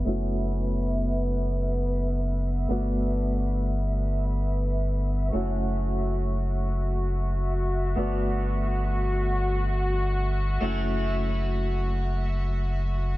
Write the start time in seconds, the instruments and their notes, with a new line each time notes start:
Already playing: violin section B3 B4, synth texture E5
0.05 sub bass F#1, harpsichord A3 C#4 E4 F#4
2.69 sub bass G1, harpsichord A3 B3 D4 F#4
5.33 sub bass F#1, harpsichord A3 C#4 E4 F#4, violin section F#4
7.96 sub bass G1, harpsichord A3 B3 D4 F#4
10.61 sub bass F#1, harpsichord A3 C#4 E4 F#4